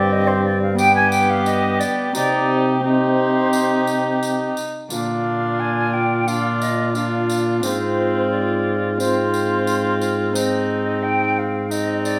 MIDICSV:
0, 0, Header, 1, 7, 480
1, 0, Start_track
1, 0, Tempo, 684932
1, 1512, Time_signature, 4, 2, 24, 8
1, 4402, Tempo, 678733
1, 8583, End_track
2, 0, Start_track
2, 0, Title_t, "Flute"
2, 0, Program_c, 0, 73
2, 0, Note_on_c, 0, 74, 92
2, 85, Note_on_c, 0, 75, 107
2, 96, Note_off_c, 0, 74, 0
2, 193, Note_on_c, 0, 72, 93
2, 203, Note_off_c, 0, 75, 0
2, 311, Note_off_c, 0, 72, 0
2, 315, Note_on_c, 0, 74, 88
2, 430, Note_off_c, 0, 74, 0
2, 434, Note_on_c, 0, 77, 85
2, 540, Note_off_c, 0, 77, 0
2, 545, Note_on_c, 0, 79, 120
2, 665, Note_off_c, 0, 79, 0
2, 669, Note_on_c, 0, 80, 100
2, 779, Note_off_c, 0, 80, 0
2, 783, Note_on_c, 0, 79, 96
2, 913, Note_on_c, 0, 77, 93
2, 924, Note_off_c, 0, 79, 0
2, 1020, Note_off_c, 0, 77, 0
2, 1024, Note_on_c, 0, 75, 97
2, 1259, Note_on_c, 0, 74, 81
2, 1269, Note_off_c, 0, 75, 0
2, 1502, Note_off_c, 0, 74, 0
2, 1506, Note_on_c, 0, 74, 96
2, 1818, Note_off_c, 0, 74, 0
2, 1999, Note_on_c, 0, 72, 74
2, 2934, Note_off_c, 0, 72, 0
2, 3448, Note_on_c, 0, 77, 73
2, 3923, Note_on_c, 0, 80, 78
2, 3933, Note_off_c, 0, 77, 0
2, 4159, Note_on_c, 0, 79, 66
2, 4170, Note_off_c, 0, 80, 0
2, 4398, Note_on_c, 0, 77, 79
2, 4409, Note_off_c, 0, 79, 0
2, 4633, Note_off_c, 0, 77, 0
2, 4637, Note_on_c, 0, 75, 71
2, 4872, Note_off_c, 0, 75, 0
2, 4877, Note_on_c, 0, 77, 65
2, 5350, Note_off_c, 0, 77, 0
2, 5364, Note_on_c, 0, 72, 70
2, 5833, Note_off_c, 0, 72, 0
2, 5837, Note_on_c, 0, 74, 76
2, 6311, Note_off_c, 0, 74, 0
2, 6320, Note_on_c, 0, 72, 83
2, 7059, Note_off_c, 0, 72, 0
2, 7283, Note_on_c, 0, 75, 74
2, 7760, Note_on_c, 0, 79, 88
2, 7770, Note_off_c, 0, 75, 0
2, 8013, Note_on_c, 0, 77, 73
2, 8024, Note_off_c, 0, 79, 0
2, 8245, Note_on_c, 0, 75, 74
2, 8256, Note_off_c, 0, 77, 0
2, 8467, Note_off_c, 0, 75, 0
2, 8472, Note_on_c, 0, 74, 79
2, 8583, Note_off_c, 0, 74, 0
2, 8583, End_track
3, 0, Start_track
3, 0, Title_t, "Cor anglais"
3, 0, Program_c, 1, 69
3, 0, Note_on_c, 1, 67, 74
3, 345, Note_off_c, 1, 67, 0
3, 553, Note_on_c, 1, 67, 78
3, 1483, Note_off_c, 1, 67, 0
3, 1507, Note_on_c, 1, 67, 69
3, 1984, Note_off_c, 1, 67, 0
3, 1988, Note_on_c, 1, 67, 67
3, 3188, Note_off_c, 1, 67, 0
3, 3438, Note_on_c, 1, 65, 49
3, 4370, Note_off_c, 1, 65, 0
3, 4393, Note_on_c, 1, 65, 55
3, 4868, Note_off_c, 1, 65, 0
3, 4877, Note_on_c, 1, 65, 58
3, 5350, Note_off_c, 1, 65, 0
3, 5365, Note_on_c, 1, 65, 51
3, 6306, Note_off_c, 1, 65, 0
3, 6323, Note_on_c, 1, 65, 61
3, 7263, Note_off_c, 1, 65, 0
3, 7282, Note_on_c, 1, 63, 53
3, 8029, Note_off_c, 1, 63, 0
3, 8233, Note_on_c, 1, 63, 59
3, 8583, Note_off_c, 1, 63, 0
3, 8583, End_track
4, 0, Start_track
4, 0, Title_t, "Harp"
4, 0, Program_c, 2, 46
4, 0, Note_on_c, 2, 43, 69
4, 0, Note_on_c, 2, 50, 62
4, 0, Note_on_c, 2, 60, 61
4, 0, Note_on_c, 2, 67, 61
4, 519, Note_on_c, 2, 59, 59
4, 528, Note_off_c, 2, 67, 0
4, 536, Note_on_c, 2, 67, 58
4, 555, Note_off_c, 2, 60, 0
4, 1309, Note_off_c, 2, 43, 0
4, 1487, Note_on_c, 2, 60, 56
4, 1493, Note_off_c, 2, 67, 0
4, 1493, Note_on_c, 2, 63, 55
4, 1501, Note_on_c, 2, 67, 50
4, 1512, Note_on_c, 2, 48, 62
4, 1514, Note_off_c, 2, 59, 0
4, 1520, Note_off_c, 2, 50, 0
4, 1957, Note_off_c, 2, 60, 0
4, 1965, Note_on_c, 2, 60, 47
4, 1969, Note_off_c, 2, 63, 0
4, 1977, Note_off_c, 2, 67, 0
4, 1977, Note_on_c, 2, 63, 48
4, 1985, Note_on_c, 2, 67, 46
4, 3423, Note_on_c, 2, 50, 40
4, 3432, Note_on_c, 2, 65, 42
4, 3443, Note_on_c, 2, 70, 45
4, 3447, Note_off_c, 2, 60, 0
4, 3450, Note_on_c, 2, 46, 49
4, 3452, Note_off_c, 2, 63, 0
4, 3457, Note_off_c, 2, 67, 0
4, 3462, Note_off_c, 2, 48, 0
4, 4859, Note_on_c, 2, 62, 39
4, 4860, Note_off_c, 2, 65, 0
4, 4867, Note_off_c, 2, 70, 0
4, 4868, Note_on_c, 2, 65, 41
4, 4875, Note_on_c, 2, 70, 38
4, 5329, Note_off_c, 2, 65, 0
4, 5331, Note_on_c, 2, 60, 42
4, 5337, Note_on_c, 2, 65, 43
4, 5348, Note_on_c, 2, 72, 45
4, 5358, Note_on_c, 2, 44, 46
4, 5370, Note_off_c, 2, 62, 0
4, 5371, Note_off_c, 2, 50, 0
4, 5379, Note_off_c, 2, 70, 0
4, 5385, Note_off_c, 2, 46, 0
4, 6295, Note_off_c, 2, 60, 0
4, 6300, Note_off_c, 2, 65, 0
4, 6303, Note_on_c, 2, 60, 46
4, 6308, Note_on_c, 2, 65, 42
4, 6310, Note_off_c, 2, 72, 0
4, 6319, Note_on_c, 2, 72, 43
4, 7245, Note_off_c, 2, 60, 0
4, 7253, Note_on_c, 2, 60, 47
4, 7261, Note_off_c, 2, 72, 0
4, 7263, Note_on_c, 2, 63, 47
4, 7270, Note_on_c, 2, 72, 46
4, 7294, Note_off_c, 2, 65, 0
4, 8116, Note_off_c, 2, 44, 0
4, 8583, Note_off_c, 2, 60, 0
4, 8583, Note_off_c, 2, 63, 0
4, 8583, Note_off_c, 2, 72, 0
4, 8583, End_track
5, 0, Start_track
5, 0, Title_t, "Viola"
5, 0, Program_c, 3, 41
5, 0, Note_on_c, 3, 60, 80
5, 535, Note_off_c, 3, 60, 0
5, 558, Note_on_c, 3, 59, 72
5, 1495, Note_off_c, 3, 59, 0
5, 1513, Note_on_c, 3, 63, 70
5, 1987, Note_off_c, 3, 63, 0
5, 1991, Note_on_c, 3, 63, 68
5, 3273, Note_off_c, 3, 63, 0
5, 3444, Note_on_c, 3, 62, 59
5, 4373, Note_off_c, 3, 62, 0
5, 4394, Note_on_c, 3, 62, 53
5, 4868, Note_off_c, 3, 62, 0
5, 4881, Note_on_c, 3, 62, 53
5, 5365, Note_on_c, 3, 60, 56
5, 5375, Note_off_c, 3, 62, 0
5, 6325, Note_off_c, 3, 60, 0
5, 6333, Note_on_c, 3, 60, 54
5, 7268, Note_off_c, 3, 60, 0
5, 7298, Note_on_c, 3, 60, 62
5, 8229, Note_off_c, 3, 60, 0
5, 8253, Note_on_c, 3, 60, 57
5, 8583, Note_off_c, 3, 60, 0
5, 8583, End_track
6, 0, Start_track
6, 0, Title_t, "Trombone"
6, 0, Program_c, 4, 57
6, 0, Note_on_c, 4, 43, 86
6, 1282, Note_off_c, 4, 43, 0
6, 1513, Note_on_c, 4, 48, 75
6, 3189, Note_off_c, 4, 48, 0
6, 3440, Note_on_c, 4, 46, 56
6, 5332, Note_off_c, 4, 46, 0
6, 5358, Note_on_c, 4, 44, 60
6, 8583, Note_off_c, 4, 44, 0
6, 8583, End_track
7, 0, Start_track
7, 0, Title_t, "Drums"
7, 550, Note_on_c, 9, 54, 53
7, 620, Note_off_c, 9, 54, 0
7, 784, Note_on_c, 9, 54, 55
7, 854, Note_off_c, 9, 54, 0
7, 1024, Note_on_c, 9, 54, 49
7, 1094, Note_off_c, 9, 54, 0
7, 1266, Note_on_c, 9, 54, 49
7, 1336, Note_off_c, 9, 54, 0
7, 1505, Note_on_c, 9, 54, 77
7, 1575, Note_off_c, 9, 54, 0
7, 2473, Note_on_c, 9, 54, 53
7, 2543, Note_off_c, 9, 54, 0
7, 2714, Note_on_c, 9, 54, 52
7, 2785, Note_off_c, 9, 54, 0
7, 2962, Note_on_c, 9, 54, 45
7, 3032, Note_off_c, 9, 54, 0
7, 3202, Note_on_c, 9, 54, 46
7, 3272, Note_off_c, 9, 54, 0
7, 3436, Note_on_c, 9, 54, 74
7, 3506, Note_off_c, 9, 54, 0
7, 4399, Note_on_c, 9, 54, 46
7, 4470, Note_off_c, 9, 54, 0
7, 4638, Note_on_c, 9, 54, 48
7, 4709, Note_off_c, 9, 54, 0
7, 4876, Note_on_c, 9, 54, 42
7, 4947, Note_off_c, 9, 54, 0
7, 5119, Note_on_c, 9, 54, 44
7, 5190, Note_off_c, 9, 54, 0
7, 5355, Note_on_c, 9, 54, 70
7, 5426, Note_off_c, 9, 54, 0
7, 6324, Note_on_c, 9, 54, 46
7, 6395, Note_off_c, 9, 54, 0
7, 6563, Note_on_c, 9, 54, 45
7, 6633, Note_off_c, 9, 54, 0
7, 6801, Note_on_c, 9, 54, 48
7, 6871, Note_off_c, 9, 54, 0
7, 7042, Note_on_c, 9, 54, 40
7, 7113, Note_off_c, 9, 54, 0
7, 7283, Note_on_c, 9, 54, 79
7, 7353, Note_off_c, 9, 54, 0
7, 8243, Note_on_c, 9, 54, 49
7, 8314, Note_off_c, 9, 54, 0
7, 8483, Note_on_c, 9, 54, 47
7, 8554, Note_off_c, 9, 54, 0
7, 8583, End_track
0, 0, End_of_file